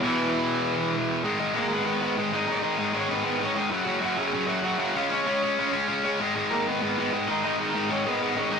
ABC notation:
X:1
M:4/4
L:1/8
Q:1/4=194
K:G#m
V:1 name="Overdriven electric guitar"
[E,E]6 z2 | z2 [A,A] [B,B]3 z [Dd] | [Dd]3 [Cc] [B,B]2 [Cc] [Dd] | [Ff]2 [Ff] [Gg]2 [Ff]2 [Ff] |
[^E^e] [Cc]4 z3 | z2 [A,A] [B,B]3 z [Dd] | [Dd]3 [Cc] [B,B]2 [Cc] [Dd] |]
V:2 name="Distorted electric guitar" clef=bass
[E,,B,,E,]8 | [G,,D,G,] [G,,D,G,] [G,,D,G,] [G,,D,G,] [G,,D,G,] [G,,D,G,] [G,,D,G,] [G,,D,G,] | [G,,D,G,] [G,,D,G,] [G,,D,G,] [G,,D,G,] [G,,D,G,] [G,,D,G,] [G,,D,G,] [G,,D,G,] | [F,,C,F,] [F,,C,F,] [F,,C,F,] [F,,C,F,] [F,,C,F,] [F,,C,F,] [F,,C,F,] [F,,C,F,] |
[C,G,C] [C,G,C] [C,G,C] [C,G,C] [C,G,C] [C,G,C] [C,G,C] [C,G,C] | [G,,D,G,] [G,,D,G,] [G,,D,G,] [G,,D,G,] [G,,D,G,] [G,,D,G,] [G,,D,G,] [G,,D,G,] | [G,,D,G,] [G,,D,G,] [G,,D,G,] [G,,D,G,] [G,,D,G,] [G,,D,G,] [G,,D,G,] [G,,D,G,] |]